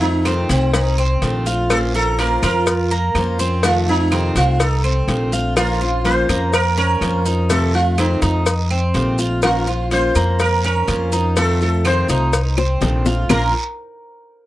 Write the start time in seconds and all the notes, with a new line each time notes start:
Already playing: F2 A3
0.00 A3 C4 D#4 F4, maracas
0.25 C3 D#3 A3 C4 F4, cowbell, short guiro, claves, maracas
0.49 C2 A3 C4 F4, cowbell, short guiro, maracas
0.73 C4 D#4, muted steel-string acoustic guitar stroke, cowbell, long guiro, maracas
0.98 C4, claves, maracas
1.22 A#1 C3 D#3 A3 C4 F4, cowbell, short guiro, maracas
1.46 A3 C4 F4, short guiro, maracas
1.70 F3 A#3 C#4 F4 A4 C5, cowbell, long guiro, claves, maracas
1.94 C#4 F4 A4 A#4 C5, maracas
2.18 F3 A#3 C#4 F4 A#4 C5, cowbell, short guiro, maracas
2.42 F2 C#4 F4 A#4 C5, cowbell, short guiro, claves, maracas
2.67 muted steel-string acoustic guitar stroke, cowbell, long guiro, maracas
2.91 A#3, maracas
3.15 F2 F3 A#3 C#4 F4 C5, cowbell, short guiro, claves, maracas
3.39 C4 C#4 F4 C5, short guiro, maracas
3.63 C3 D#3 A3 C4 F4, cowbell, long guiro, maracas
3.87 A3 C4 D#4 F4, maracas
4.11 C3 D#3 A3 C4 F4, cowbell, short guiro, claves, maracas
4.35 C2 A3 C4 F4, cowbell, short guiro, maracas
4.60 D#4 A4, muted steel-string acoustic guitar stroke, cowbell, long guiro, maracas
4.84 C4, claves, maracas
5.07 A#1 C3 D#3 A3 C4 F4, cowbell, short guiro, maracas
5.32 A3 C4 F4, short guiro, maracas
5.56 F3 A#3 C#4 F4 A#4 C5, cowbell, long guiro, claves, maracas
5.80 C#4 F4 C5, maracas
6.04 F3 A#3 C#4 F4 C5, cowbell, short guiro, maracas
6.29 F2 A#3 C#4 F4 C5, cowbell, short guiro, claves, maracas
6.53 A#4, muted steel-string acoustic guitar stroke, cowbell, long guiro, maracas
6.77 C#4 A#4, maracas
7.01 F2 F3 A#3 C#4 F4 C5, cowbell, short guiro, claves, maracas
7.25 C#4 D#4 F4 C5, short guiro, maracas
7.49 C3 D#3 A3 C4 F4 A4, cowbell, long guiro, maracas
7.74 A3 C4 F4, maracas
7.97 C3 D#3 A3 C4 D#4 F4, cowbell, short guiro, claves, maracas
8.22 F2 A3 C4 D#4 F4, cowbell, short guiro, maracas
8.46 muted steel-string acoustic guitar stroke, cowbell, long guiro, maracas
8.70 C4, claves, maracas
8.94 A#1 C3 D#3 A3 C4 F4, cowbell, short guiro, maracas
9.18 A3 C4 F4, short guiro, maracas
9.42 F3 A#3 C#4 F4 A#4 C5, cowbell, long guiro, claves, maracas
9.67 C#4 F4 C5, maracas
9.91 F3 A#3 C#4 F4 C5, cowbell, short guiro, maracas
10.15 F2 A#3 C#4 F4 C5, cowbell, short guiro, claves, maracas
10.39 A#4, muted steel-string acoustic guitar stroke, cowbell, long guiro, maracas
10.64 C#4 A#4, maracas
10.88 F2 F3 A#3 C#4 F4 C5, cowbell, short guiro, claves, maracas
11.12 C#4 D#4 F4 C5, short guiro, maracas
11.36 C3 D#3 A3 C4 F4 A4, cowbell, long guiro, maracas
11.61 A3 C4 F4 A4, maracas
11.84 C3 D#3 A3 C4 F4 C5, cowbell, short guiro, claves, maracas
12.09 C2 A3 C4 D#4 F4, cowbell, short guiro, maracas
12.33 muted steel-string acoustic guitar stroke, cowbell, long guiro, maracas
12.57 C4, high bongo, claves, maracas
12.81 A#1 C3 D#3 A3 C4 F4, cowbell, low bongo, short guiro, maracas
13.06 A3 C4 F4, low bongo, short guiro, maracas
13.29 A#1 A#2 F3 A#3 C#4 F4 A#4 C5, low bongo, long guiro, claves, maracas